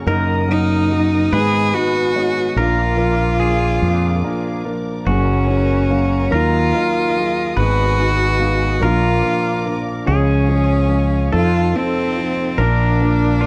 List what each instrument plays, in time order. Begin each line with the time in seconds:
Already playing: string section A#4
0.06 grand piano F#1 F#2 F#3 A#3 D#4 A#4, fretless electric bass F#2, pedal steel guitar A#4, string section D#5 F#5 D#6
0.48 grand piano F#3 A#3 D#4 A#4, cello D#4
0.90 grand piano F#3 A#3 D#4 F#4
1.32 grand piano G#1 G#2 G#3 B3 D#4 B4, fretless electric bass G#2, cello G#4, pedal steel guitar B4, string section B4 D#5 G#5
1.74 grand piano G#3 B3 D#4 B4, cello F#4
2.16 grand piano G#3 B3 D#4 C#5
2.56 fretless electric bass A#1, grand piano A#1 A#2 F3 A#3 D4 A#4, cello F4, pedal steel guitar A#4, string section A#4 D5 F5 D6
2.97 grand piano F3 A#3 D4 A#4
3.39 grand piano F3 A#3 D4 G#4, pedal steel guitar G#4
3.82 fretless electric bass F2
4.24 grand piano F3 A#3 D4 A#4
4.64 grand piano F3 A#3 D4 A#4
5.06 fretless electric bass F#1, grand piano F#1 F#2 F#3 A#3 C#4 G#4, cello C#4, pedal steel guitar F#4, string section G#5 A#5 C#6
5.47 grand piano F#3 A#3 C#4 G#4
5.90 grand piano F#3 A#3 C#4 F5
6.30 grand piano D#2 D#3 F#3 A#3 D#4 A#4, fretless electric bass D#2, cello F4, pedal steel guitar A#4, string section D#5 D#6
6.74 grand piano F#3 A#3 D#4 A#4
7.16 grand piano F#3 A#3 D#4 G#4
7.56 grand piano G#1 G#2 G#3 B3 D#4 B4, fretless electric bass G#1, cello F#4, string section B4 D#5 G#5, pedal steel guitar B4
7.98 grand piano G#3 B3 D#4 B4
8.39 grand piano G#3 B3 D#4 F5
8.80 grand piano A#1 A#2 F3 A#3 D4 A#4, fretless electric bass A#1, string section A#4 D5 F5 D6, pedal steel guitar A#4
8.84 cello F4
9.22 grand piano F3 A#3 D4 A#4
9.65 grand piano F3 A#3 D4 A#4
10.06 grand piano C#2 C#3 F3 G#3 C#4 G#4, fretless electric bass C#2, string section G#4 C#5 C#6, pedal steel guitar G#4
10.10 cello C#4
10.49 grand piano F3 G#3 C#4 G#4
10.88 grand piano F3 G#3 C#4 G#4
11.32 grand piano F1 F2 F3 C4 D#4 A4, fretless electric bass F2, cello F4, pedal steel guitar A4, string section A4 D#5 C6
11.74 grand piano F3 C4 D#4 A4, cello C4
12.16 grand piano F3 C4 D#4 F4
12.57 grand piano A#1 A#2 F3 A#3 D4 A#4, fretless electric bass A#1, cello D4, string section A#4 D5 F5 D6, pedal steel guitar A#4
13.01 grand piano F3 A#3 D4 A#4
13.41 grand piano F3 A#3 D4 A#4, pedal steel guitar F4